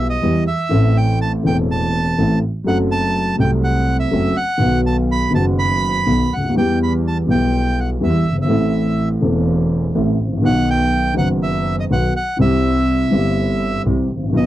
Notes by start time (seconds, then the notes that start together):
Already playing: B1 B2 E3 G3 B3 G4
0.10 D#5
0.21 E2 E3 G3 B3 G4
0.47 E5
0.69 A1 A2 E3 A3 C4 A4
0.97 G5
1.22 A5
1.43 E1 E2 E3 A3 C4 A4
1.47 G5
1.71 A5
2.17 A1 A2 E3 A3 C4 A4
2.64 F#1 F#2 F#3 A3 C4 F#5
2.68 A4
2.91 A5
3.37 C2 C3 F#3 A3 C4 A4 G5
3.64 F#5
4.00 E5
4.11 F#1 F#2 F#3 A3 C4 A4
4.37 F#5
4.58 B1 B2 D#3 F#3 B3
4.62 F#4
4.86 A5
5.12 B5
5.31 F#1 F#2 D#3 F#3 B3
5.35 F#4 A5
5.59 B5
6.06 B1 B2 D#3 F#3 B3 F#4
6.31 D2 F#5
6.37 C#2
6.44 D2
6.49 D#2
6.55 E2 E3 G3 B3 G4 G5
6.83 B5
7.08 A5
7.27 B1 B2 E3 G3 B3 G4
7.31 G5
7.80 F#5
8.00 E2 E3 G3 B3 G4 E5
8.26 G1
8.32 F#1
8.38 G1
8.42 G#1 E5
8.47 A1 A2 E3 A3 C4 A4
9.20 E1 E2 E3 A3 C4 A4
9.95 A1 A2 E3 A3 C4 A4
10.19 A1
10.25 G#1
10.32 A1
10.37 A#1
10.42 B1 B2 D#3 F#3 B3 F#5
10.46 D#4
10.70 G5
11.14 F#1 F#2 D#3 F#3 B3 F#5
11.18 F#4
11.43 E5
11.80 D#5
11.89 B1 B2 D#3 F#3 B3 F#4 F#5
12.16 F#5
12.37 C2 C3 E3 G3 C4
12.41 G4 E5
13.10 G1 G2 E3 G3 C4 G4
13.84 C2 C3 E3 G3 C4 G4
14.09 A1
14.16 G#1
14.23 A1
14.29 A#1 D#3
14.34 B1 B2 F#3 B3 D#4 D#5